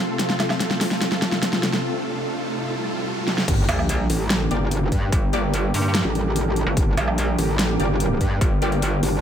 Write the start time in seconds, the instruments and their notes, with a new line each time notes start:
Already playing: supersaw synth C3 A3 F4 A4, ambient pad C4 F4 A4 F5, riser
0.19 snare, closed hi-hat
0.30 snare
0.40 snare, closed hi-hat, low woodblock
0.50 snare, low woodblock
0.60 snare, closed hi-hat
0.71 snare
0.81 snare, open hi-hat
0.91 snare
1.01 snare, closed hi-hat
1.12 snare
1.22 snare, closed hi-hat
1.32 snare
1.43 snare, closed hi-hat
1.53 snare
1.63 snare, closed hi-hat
1.73 snare
2.66 swell
3.28 snare
3.38 snare
3.48 wobble bass G1, supersaw synth D3 G3 A#3 G4, ambient pad D4, kick, closed hi-hat, crash, sub drop
3.69 wobble bass A#1, ambient pad G4, closed hi-hat, low woodblock
3.79 low woodblock
3.89 closed hi-hat
3.96 ambient pad A#4
4.10 wobble bass A1, open hi-hat
4.30 snare, closed hi-hat
4.48 wobble bass G1, synth stab A#3 G4 D5, ambient pad G5, closed hi-hat
4.71 closed hi-hat
4.92 wobble bass G2, kick, closed hi-hat
5.12 wobble bass G1, kick, closed hi-hat
5.33 synth stab A#3 G4 D5, closed hi-hat
5.54 closed hi-hat
5.74 wobble bass G2, open hi-hat
5.95 snare, closed hi-hat
6.05 wobble bass A1
6.15 closed hi-hat
6.36 closed hi-hat
6.56 closed hi-hat
6.67 wobble bass G1
6.77 wobble bass G1, kick, closed hi-hat
6.97 wobble bass A#1, closed hi-hat, low woodblock
7.08 low woodblock
7.18 closed hi-hat
7.38 wobble bass A1, open hi-hat
7.59 snare, closed hi-hat
7.80 wobble bass G1, synth stab A#3 G4 D5, closed hi-hat
8.00 closed hi-hat
8.21 wobble bass G2, kick, closed hi-hat
8.41 wobble bass G1, kick, closed hi-hat
8.62 synth stab A#3 G4 D5, closed hi-hat
8.72 closed hi-hat
8.82 closed hi-hat
9.03 wobble bass G1, open hi-hat